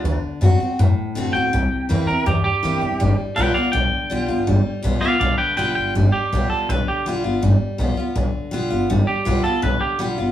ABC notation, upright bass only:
X:1
M:4/4
L:1/8
Q:1/4=163
K:Gmix
V:1 name="Upright bass" clef=bass
D,, z ^F,, z F,, z F,, D,, | C,, z E,, z E,, z E,, C,, | G,,, z B,,, z B,,, z B,,, G,,, | G,,, z B,,, z B,,, z B,,, G,,, |
G,,, z B,,, z B,,, z B,,, G,,, | G,,, z B,,, z B,,, z B,,, G,,, | G,,, z B,,, z B,,, z B,,, G,,, |]